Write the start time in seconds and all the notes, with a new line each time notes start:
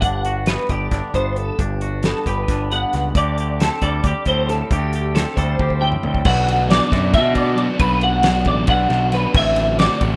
Already playing: G4
0.01 G1 G2 D4 F#5, kick, closed hi-hat
0.25 F#4, closed hi-hat
0.46 B3 B4, snare, closed hi-hat
0.69 G1 D3 G4 D5, kick, closed hi-hat
0.91 G1 D4, kick, snare, closed hi-hat
1.14 G1 G2 B3 C5, kick, closed hi-hat
1.36 A4, closed hi-hat
1.59 G1 G2 D4, kick, closed hi-hat
1.81 F#4, closed hi-hat
2.03 B3 A4, snare, closed hi-hat
2.26 G1 D3 G4 B4, kick, closed hi-hat
2.48 G1 D4, kick, snare, closed hi-hat
2.71 G2 B3 F#5, closed hi-hat
2.93 C#2, snare, closed hi-hat
3.15 D2 D3 G4 D5, kick, closed hi-hat
3.38 G4, closed hi-hat
3.60 C4 A4, snare, closed hi-hat
3.81 D2 G3 A4 D5, kick, closed hi-hat
4.04 D2 G4, kick, closed hi-hat
4.25 D2 A2 C4 C5, kick, closed hi-hat
4.49 A4, snare, closed hi-hat
4.71 D2 D3 G4, kick, closed hi-hat
4.93 G4, closed hi-hat
5.15 C4 A4, snare, closed hi-hat
5.36 D2 G3 A4 C5, kick, closed hi-hat
5.59 D2 G4, kick
5.70 kick
5.81 A2 C4 G5
5.92 mid tom
6.03 D2, floor tom
6.14 kick
6.25 B1 B2 F#3 B3 D4 F#4 F#5, kick, crash
6.48 ride
6.69 B2 F#3 B3 D4 F#4 D5, snare, ride
6.91 F#2 B3 D4 F#4, kick, snare, ride
7.14 B2 E5, kick, snare, ride
7.34 B3 D4 F#4 D5, kick, ride
7.55 F#3 B3 D4 F#4, ride
7.76 B1 B2 F#3 B3 D4 F#4 B4, kick, ride
8.01 F#5, ride
8.21 B2 F#3 B3 D4 F#4, snare, ride
8.43 A1 B3 D4 F#4, kick, ride
8.48 D5
8.67 B1 F#5, kick, ride
8.89 B1 B3 D4 F#4, snare, ride
9.12 F#3 B3 D4 F#4 B4, snare, ride
9.33 A1 A2 D3 A3 C4 F#4 E5, kick, crash
9.56 snare, ride
9.79 A2 D3 A3 C4 F#4 D5, snare, ride
10.00 A1 A3 C4 F#4, kick, ride